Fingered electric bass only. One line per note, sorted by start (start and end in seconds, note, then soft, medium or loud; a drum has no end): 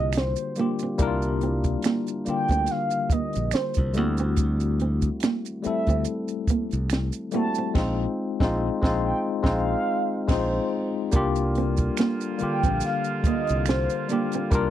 0.00 0.34 C2 medium
1.00 1.75 C2 loud
2.27 muted fingered electric bass stroke soft
2.51 2.67 D2 medium
3.11 muted fingered electric bass stroke soft
3.36 3.52 A#1 medium
3.78 3.97 C2 medium
3.97 5.09 D2 loud
5.66 muted fingered electric bass stroke soft
5.89 6.05 D2 medium
6.49 muted fingered electric bass stroke soft
6.73 7.10 C2 medium
7.76 8.05 A#1 loud
8.41 8.69 A#1 medium
8.84 9.12 A#1 loud
9.45 9.74 A#1 medium
10.29 10.59 A#1 medium
11.14 11.89 C2 medium
12.42 muted fingered electric bass stroke soft
12.65 12.81 A#1 medium
13.25 muted fingered electric bass stroke soft
13.50 13.87 C2 medium
14.53 14.70 C2 loud